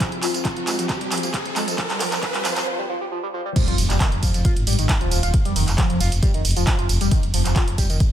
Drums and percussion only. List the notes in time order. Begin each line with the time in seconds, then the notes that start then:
0.00 kick, clap, closed hi-hat, tambourine
0.12 closed hi-hat
0.23 clap, open hi-hat, tambourine
0.34 closed hi-hat, tambourine
0.45 kick, clap, closed hi-hat, tambourine
0.57 closed hi-hat
0.67 clap, open hi-hat, tambourine
0.79 closed hi-hat, tambourine
0.89 kick, clap, closed hi-hat, tambourine
1.01 closed hi-hat
1.12 clap, open hi-hat, tambourine
1.17 closed hi-hat
1.23 closed hi-hat, tambourine
1.34 kick, clap, closed hi-hat, tambourine
1.46 closed hi-hat
1.56 clap, open hi-hat, tambourine
1.68 closed hi-hat, tambourine
1.78 kick, clap, closed hi-hat
1.90 clap, closed hi-hat
2.00 clap, open hi-hat, tambourine
2.12 clap, closed hi-hat, tambourine
2.23 kick, clap, closed hi-hat
2.34 clap, closed hi-hat
2.45 clap, open hi-hat, tambourine
2.56 clap, closed hi-hat, tambourine
3.56 kick, closed hi-hat, ride, tambourine, crash
3.68 closed hi-hat
3.78 open hi-hat, ride, tambourine
3.90 clap, closed hi-hat, tambourine
4.00 kick, clap, closed hi-hat, ride
4.12 closed hi-hat
4.23 kick, open hi-hat, ride, tambourine
4.34 closed hi-hat, tambourine
4.45 kick, closed hi-hat, ride, tambourine
4.56 closed hi-hat
4.67 open hi-hat, ride, tambourine
4.73 closed hi-hat
4.79 closed hi-hat, tambourine
4.89 kick, clap, closed hi-hat, ride
5.01 closed hi-hat
5.11 open hi-hat, ride, tambourine
5.23 closed hi-hat, tambourine
5.34 kick, closed hi-hat, ride, tambourine
5.45 closed hi-hat
5.56 open hi-hat, ride, tambourine
5.68 clap, closed hi-hat, tambourine
5.78 kick, clap, closed hi-hat, ride
5.90 closed hi-hat
6.00 open hi-hat, ride, tambourine
6.12 closed hi-hat, tambourine
6.23 kick, closed hi-hat, ride, tambourine
6.34 closed hi-hat
6.45 open hi-hat, ride, tambourine
6.51 closed hi-hat
6.56 closed hi-hat, tambourine
6.67 kick, clap, closed hi-hat, ride
6.79 closed hi-hat
6.89 open hi-hat, ride, tambourine
7.01 closed hi-hat, tambourine
7.11 kick, closed hi-hat, ride, tambourine
7.23 closed hi-hat
7.34 open hi-hat, ride, tambourine
7.45 clap, closed hi-hat, tambourine
7.56 kick, clap, closed hi-hat, ride, tambourine
7.68 closed hi-hat
7.78 kick, open hi-hat, ride, tambourine
7.90 closed hi-hat, tambourine
8.00 kick, closed hi-hat, ride, tambourine